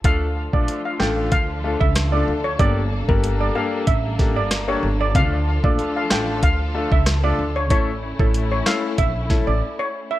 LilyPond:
<<
  \new Staff \with { instrumentName = "Steel pan" } { \time 4/4 \key d \minor \tempo 4 = 94 f''16 r8 d''16 r16 f''16 g''16 r16 f''16 r8 e''16 r16 d''16 r16 cis''16 | d''16 r8 bes'16 r16 d''16 f''16 r16 e''16 r8 d''16 r16 cis''16 r16 d''16 | f''16 r8 d''16 r16 f''16 g''16 r16 f''16 r8 e''16 r16 d''16 r16 cis''16 | cis''16 r8 a'16 r16 cis''16 f''16 r16 e''16 r8 d''16 r16 cis''16 r16 e''16 | }
  \new Staff \with { instrumentName = "Grand piano" } { \time 4/4 \key d \minor <a d' f' a'>16 r8 <a d' f' a'>8. <a d' f' a'>8 r8 <a d' f' a'>16 r8 <a d' f' a'>16 r8 | <bes d' g' a'>16 r8 <bes d' g' a'>8. <bes d' g' a'>8 r8 <bes d' g' a'>16 r8 <bes d' g' a'>16 r8 | <a d' f' a'>16 r8 <a d' f' a'>8. <a d' f' a'>8 r8 <a d' f' a'>16 r8 <a d' f' a'>16 r8 | <a cis' e' a'>16 r8 <a cis' e' a'>8. <a cis' e' a'>8 r8 <a cis' e' a'>16 r4 r16 | }
  \new Staff \with { instrumentName = "String section" } { \time 4/4 \key d \minor << { <f f' a'>1 | <g bes>1 | <f f' a'>1 | <cis' e'>1 | } \\ { d'1~ | d'1~ | d'1 | a1 | } >> }
  \new Staff \with { instrumentName = "Upright bass" } { \clef bass \time 4/4 \key d \minor d,8. bes,,16 r8 a,,8 d,8. cis,8. d,8 | g,,8. g,,8. r8 a,,8. g,,8. g,,8 | d,8. bes,,16 r8 a,,8 d,8. cis,8. d,8 | a,,8. a,,8. r8 bes,,8. a,,16 r4 | }
  \new DrumStaff \with { instrumentName = "Drums" } \drummode { \time 4/4 <hh bd>8. bd16 hh8 <ss sn>8 <hh bd>8. bd16 <hh ss sn>4 | <hh bd>8. bd16 hh4 <hh bd>8 <bd sn>8 <hh ss sn>4 | <hh bd>8. bd16 hh8 <ss sn>8 <hh bd>8. bd16 <hh ss sn>4 | <hh bd>8. bd16 hh8 <ss sn>8 <hh bd>8 <bd sn>8 r4 | }
>>